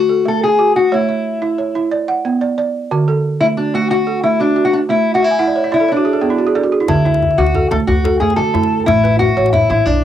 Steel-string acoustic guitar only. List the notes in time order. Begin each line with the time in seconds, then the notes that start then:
Already playing: F#4
0.28 A4
0.43 G#4
0.76 F#4
0.94 E4
3.41 E4
3.57 D4
3.75 F#4
3.91 F#4
4.23 E4
4.40 D4
4.65 F#4
4.73 D4
4.90 E4
5.15 F#4
5.24 E4
5.74 E4
5.92 D4
6.89 E4
7.38 F#4
7.71 A4
7.87 F#4
8.20 G#4
8.36 A4
8.86 E4
9.19 F#4
9.53 E4
9.70 E4
9.86 D4